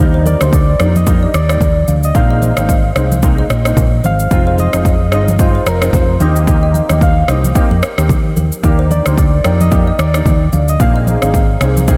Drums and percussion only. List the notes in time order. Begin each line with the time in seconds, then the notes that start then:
0.26 high conga, shaker
0.41 cross-stick, shaker
0.53 kick, shaker
0.80 cross-stick, shaker
0.96 high conga, shaker
1.07 kick, shaker
1.34 cross-stick, shaker
1.49 cross-stick, shaker
1.60 kick, high conga, low conga, shaker
1.88 high conga, shaker
2.03 shaker
2.15 kick, low conga, shaker
2.42 high conga, shaker
2.57 cross-stick, shaker
2.69 kick, shaker
2.96 cross-stick, shaker
3.12 high conga, shaker
3.23 kick, shaker
3.50 cross-stick, shaker
3.65 cross-stick, shaker
3.77 kick, high conga, low conga, shaker
4.04 high conga, shaker
4.19 shaker
4.31 kick, low conga, shaker
4.58 high conga, shaker
4.73 cross-stick, shaker
4.85 kick, shaker
5.12 cross-stick, shaker
5.28 high conga, shaker
5.39 kick, shaker
5.66 cross-stick, shaker
5.82 cross-stick, shaker
5.93 kick, high conga, low conga, shaker
6.20 high conga, shaker
6.36 shaker
6.47 kick, low conga, shaker
6.74 high conga, shaker
6.89 cross-stick, high conga, shaker
7.01 kick, shaker
7.28 cross-stick, shaker
7.44 high conga, shaker
7.55 kick, shaker
7.83 cross-stick, shaker
7.98 cross-stick, shaker
8.09 kick, high conga, low conga, shaker
8.37 high conga, shaker
8.52 shaker
8.64 kick, low conga, shaker
8.91 high conga, shaker
9.06 cross-stick, shaker
9.18 kick, shaker
9.44 cross-stick, shaker
9.61 high conga, shaker
9.72 kick, shaker
9.99 cross-stick, shaker
10.14 cross-stick, shaker
10.26 kick, high conga, low conga, shaker
10.53 high conga, shaker
10.68 shaker
10.80 kick, low conga, shaker
11.07 high conga, shaker
11.22 cross-stick, shaker
11.34 kick, shaker
11.61 cross-stick, shaker
11.77 high conga, shaker
11.88 kick, shaker